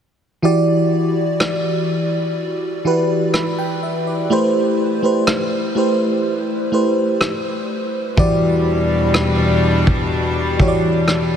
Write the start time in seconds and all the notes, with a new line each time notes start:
0.42 E3 E4 F#4 G4 D5
1.40 cross-stick
2.85 E3 E4 F#4 G4 B4
3.34 B5, cross-stick
3.59 G5
3.83 E5
4.07 D5
4.30 A3 E4 G4 B4 C5
5.03 A3 E4 G4 B4 C5
5.27 cross-stick
5.75 A3 E4 G4 B4 C5
6.72 A3 E4 G4 B4 C5
7.21 cross-stick
8.17 E2 B2 E3 G3 D4 E4 F#4 G4 D5, kick
9.14 cross-stick
9.87 kick
10.59 E3 E4 F#4 G4 C#5, kick
10.68 D5
11.08 cross-stick